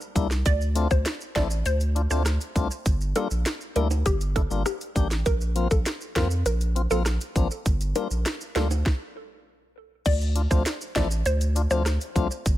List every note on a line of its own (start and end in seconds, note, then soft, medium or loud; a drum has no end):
0.01 maracas medium
0.15 0.43 C2 loud
0.15 0.28 G3 medium
0.15 0.28 A#3 medium
0.15 0.28 D4 medium
0.15 0.28 E4 loud
0.15 kick medium
0.15 closed hi-hat medium
0.15 maracas soft
0.31 snare medium
0.31 maracas medium
0.46 0.87 D2 loud
0.46 0.56 D5 loud
0.46 kick loud
0.46 closed hi-hat medium
0.46 maracas medium
0.61 maracas soft
0.75 0.88 A3 medium
0.75 0.88 C4 medium
0.75 0.88 D4 medium
0.75 0.88 F4 medium
0.75 closed hi-hat medium
0.75 maracas soft
0.91 1.05 D2 medium
0.91 1.01 C5 medium
0.91 kick medium
0.91 maracas medium
1.06 snare loud
1.06 closed hi-hat medium
1.06 maracas medium
1.21 maracas soft
1.35 1.63 A1 medium
1.35 1.48 A3 medium
1.35 1.48 C4 medium
1.35 1.48 D4 medium
1.35 1.48 E4 medium
1.35 1.46 D5 medium
1.35 kick loud
1.35 snare loud
1.35 closed hi-hat medium
1.51 maracas medium
1.66 2.07 D2 loud
1.66 1.76 C5 medium
1.66 closed hi-hat medium
1.66 maracas medium
1.80 closed hi-hat medium
1.80 maracas soft
1.95 2.02 D4 medium
1.95 2.02 F4 medium
1.95 closed hi-hat medium
2.10 2.38 D2 medium
2.10 2.23 A3 medium
2.10 2.23 C4 medium
2.10 2.23 D4 medium
2.10 2.23 F4 medium
2.10 2.21 C5 medium
2.10 maracas medium
2.26 cross-stick loud
2.26 snare medium
2.26 closed hi-hat medium
2.26 maracas medium
2.41 closed hi-hat soft
2.41 maracas medium
2.56 2.69 C2 medium
2.56 2.68 A3 medium
2.56 2.68 C4 medium
2.56 2.68 D4 medium
2.56 2.68 F4 medium
2.56 kick medium
2.56 closed hi-hat medium
2.56 maracas medium
2.71 maracas medium
2.86 3.13 G1 loud
2.86 kick loud
2.86 closed hi-hat medium
2.86 maracas medium
3.01 maracas soft
3.16 3.28 G3 medium
3.16 3.28 A#3 medium
3.16 3.28 D4 medium
3.16 3.28 F4 medium
3.16 3.26 A4 medium
3.16 closed hi-hat medium
3.16 high timbale medium
3.16 maracas soft
3.31 3.45 A#1 medium
3.31 maracas medium
3.46 snare loud
3.46 closed hi-hat medium
3.46 maracas medium
3.61 maracas soft
3.75 4.03 D2 medium
3.75 3.88 G3 medium
3.75 3.88 A#3 medium
3.75 3.88 D4 medium
3.75 3.88 E4 medium
3.75 3.86 A#4 medium
3.75 closed hi-hat medium
3.91 high timbale medium
3.91 maracas medium
4.06 4.47 G1 loud
4.06 4.16 G4 medium
4.06 kick medium
4.06 closed hi-hat medium
4.06 maracas medium
4.21 closed hi-hat soft
4.21 maracas medium
4.35 4.42 D4 medium
4.35 4.42 E4 medium
4.35 4.46 A4 medium
4.35 kick loud
4.35 closed hi-hat medium
4.50 4.65 G1 loud
4.50 4.63 G3 medium
4.50 4.63 A#3 medium
4.50 4.63 D4 medium
4.50 4.63 F4 medium
4.50 maracas medium
4.66 5.08 G4 medium
4.66 cross-stick loud
4.66 closed hi-hat medium
4.66 high timbale medium
4.66 maracas medium
4.81 closed hi-hat soft
4.81 maracas medium
4.95 5.23 A1 medium
4.95 5.08 G3 medium
4.95 5.08 A#3 medium
4.95 5.08 D4 medium
4.95 5.08 G4 medium
4.95 kick medium
4.95 closed hi-hat medium
4.95 maracas soft
5.11 snare medium
5.11 maracas medium
5.26 5.67 A#1 loud
5.26 5.36 A#4 loud
5.26 kick loud
5.26 closed hi-hat medium
5.26 maracas medium
5.41 maracas soft
5.56 5.68 F3 medium
5.56 5.68 A#3 medium
5.56 5.68 C4 medium
5.56 5.68 F4 medium
5.56 closed hi-hat medium
5.56 maracas soft
5.71 5.85 A#1 loud
5.71 5.81 A4 medium
5.71 kick medium
5.71 maracas medium
5.86 snare loud
5.86 closed hi-hat medium
5.86 maracas medium
6.01 maracas soft
6.15 6.43 F2 medium
6.15 6.28 F3 medium
6.15 6.28 A#3 medium
6.15 6.28 C4 medium
6.15 6.28 F4 medium
6.15 6.26 A#4 medium
6.15 kick loud
6.15 snare loud
6.15 closed hi-hat medium
6.31 maracas medium
6.46 6.87 A#1 loud
6.46 6.56 A#4 medium
6.46 closed hi-hat medium
6.46 maracas medium
6.61 closed hi-hat soft
6.61 maracas medium
6.75 6.82 C4 medium
6.75 6.82 F4 medium
6.75 closed hi-hat medium
6.90 7.18 A#1 medium
6.90 7.03 F3 medium
6.90 7.03 A#3 medium
6.90 7.03 C4 medium
6.90 7.03 F4 medium
6.90 7.01 A4 medium
6.90 maracas medium
7.06 cross-stick loud
7.06 snare medium
7.06 closed hi-hat medium
7.06 maracas medium
7.21 closed hi-hat medium
7.21 maracas soft
7.36 7.50 A1 loud
7.36 7.48 F3 medium
7.36 7.48 A#3 medium
7.36 7.48 C4 medium
7.36 7.48 D4 medium
7.36 kick medium
7.36 closed hi-hat medium
7.36 maracas soft
7.51 maracas medium
7.66 7.93 G1 loud
7.66 kick loud
7.66 closed hi-hat medium
7.66 maracas medium
7.81 closed hi-hat medium
7.81 maracas soft
7.95 8.08 G3 medium
7.95 8.08 A#3 medium
7.95 8.08 D4 medium
7.95 8.08 F4 medium
7.95 8.06 A#4 medium
7.95 closed hi-hat medium
7.95 high timbale medium
7.95 maracas medium
8.11 8.24 A#1 medium
8.11 maracas medium
8.26 cross-stick medium
8.26 snare loud
8.26 closed hi-hat medium
8.26 maracas medium
8.41 maracas soft
8.55 8.83 D2 medium
8.55 8.68 G3 medium
8.55 8.68 A#3 medium
8.55 8.68 D4 medium
8.55 8.68 F4 medium
8.55 8.66 A4 medium
8.55 snare loud
8.55 closed hi-hat medium
8.71 high timbale medium
8.71 maracas medium
8.86 kick loud
8.86 snare medium
10.06 10.47 D2 loud
10.06 10.16 D5 loud
10.06 kick loud
10.06 closed hi-hat medium
10.06 crash loud
10.06 maracas medium
10.21 maracas soft
10.35 10.42 D4 medium
10.35 10.42 F4 medium
10.35 closed hi-hat medium
10.50 10.65 D2 loud
10.50 10.63 F3 medium
10.50 10.63 A3 medium
10.50 10.63 C4 medium
10.50 10.63 D4 medium
10.50 10.63 F4 medium
10.50 10.61 C5 medium
10.50 kick loud
10.50 maracas medium
10.66 snare loud
10.66 closed hi-hat medium
10.66 maracas medium
10.81 maracas soft
10.96 11.23 A1 medium
10.96 11.08 F3 medium
10.96 11.08 A3 medium
10.96 11.08 C4 medium
10.96 11.08 D4 medium
10.96 11.08 E4 medium
10.96 11.06 D5 medium
10.96 kick loud
10.96 snare loud
10.96 closed hi-hat medium
10.96 maracas medium
11.11 maracas medium
11.26 11.67 D2 loud
11.26 11.36 C5 medium
11.26 closed hi-hat medium
11.26 maracas medium
11.41 closed hi-hat medium
11.41 maracas medium
11.55 11.62 D4 medium
11.55 11.62 F4 medium
11.55 closed hi-hat medium
11.55 maracas medium
11.70 11.98 D2 medium
11.70 11.83 F3 medium
11.70 11.83 A3 medium
11.70 11.83 C4 medium
11.70 11.83 D4 medium
11.70 11.83 F4 medium
11.70 11.81 C5 medium
11.70 maracas medium
11.86 cross-stick loud
11.86 snare medium
11.86 closed hi-hat medium
11.86 maracas medium
12.01 closed hi-hat medium
12.01 maracas medium
12.15 12.30 C2 loud
12.15 12.28 F3 medium
12.15 12.28 A3 medium
12.15 12.28 C4 medium
12.15 12.28 D4 medium
12.15 12.28 F4 loud
12.15 kick medium
12.15 closed hi-hat medium
12.15 maracas medium
12.31 maracas medium
12.46 12.58 G1 loud
12.46 kick loud
12.46 closed hi-hat medium
12.46 maracas medium